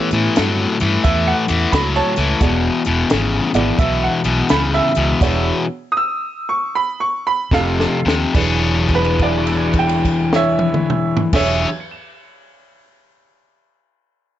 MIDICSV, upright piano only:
0, 0, Header, 1, 2, 480
1, 0, Start_track
1, 0, Tempo, 687285
1, 1689, Time_signature, 4, 2, 24, 8
1, 3143, Tempo, 741656
1, 4583, Tempo, 813008
1, 5543, Tempo, 851064
1, 8950, End_track
2, 0, Start_track
2, 0, Title_t, "Upright piano"
2, 0, Program_c, 0, 0
2, 725, Note_on_c, 0, 76, 85
2, 885, Note_off_c, 0, 76, 0
2, 890, Note_on_c, 0, 78, 90
2, 1201, Note_off_c, 0, 78, 0
2, 1204, Note_on_c, 0, 83, 86
2, 1362, Note_off_c, 0, 83, 0
2, 1368, Note_on_c, 0, 81, 104
2, 1369, Note_on_c, 0, 73, 86
2, 1819, Note_off_c, 0, 73, 0
2, 1832, Note_off_c, 0, 81, 0
2, 2646, Note_on_c, 0, 76, 85
2, 2806, Note_off_c, 0, 76, 0
2, 2819, Note_on_c, 0, 78, 81
2, 3135, Note_off_c, 0, 78, 0
2, 3142, Note_on_c, 0, 83, 90
2, 3291, Note_off_c, 0, 83, 0
2, 3299, Note_on_c, 0, 76, 97
2, 3753, Note_off_c, 0, 76, 0
2, 4061, Note_on_c, 0, 87, 78
2, 4094, Note_on_c, 0, 88, 96
2, 4096, Note_off_c, 0, 87, 0
2, 4409, Note_off_c, 0, 88, 0
2, 4430, Note_on_c, 0, 85, 85
2, 4585, Note_off_c, 0, 85, 0
2, 4600, Note_on_c, 0, 83, 91
2, 4741, Note_off_c, 0, 83, 0
2, 4747, Note_on_c, 0, 85, 88
2, 4894, Note_off_c, 0, 85, 0
2, 4903, Note_on_c, 0, 83, 96
2, 5052, Note_off_c, 0, 83, 0
2, 5059, Note_on_c, 0, 69, 88
2, 5064, Note_on_c, 0, 77, 103
2, 5344, Note_off_c, 0, 69, 0
2, 5359, Note_off_c, 0, 77, 0
2, 5880, Note_on_c, 0, 71, 97
2, 6027, Note_off_c, 0, 71, 0
2, 6036, Note_on_c, 0, 74, 81
2, 6340, Note_off_c, 0, 74, 0
2, 6353, Note_on_c, 0, 79, 75
2, 6659, Note_off_c, 0, 79, 0
2, 6669, Note_on_c, 0, 73, 81
2, 6674, Note_on_c, 0, 76, 100
2, 7135, Note_off_c, 0, 73, 0
2, 7146, Note_off_c, 0, 76, 0
2, 7235, Note_on_c, 0, 73, 87
2, 7236, Note_on_c, 0, 76, 100
2, 7402, Note_off_c, 0, 73, 0
2, 7410, Note_off_c, 0, 76, 0
2, 8950, End_track
0, 0, End_of_file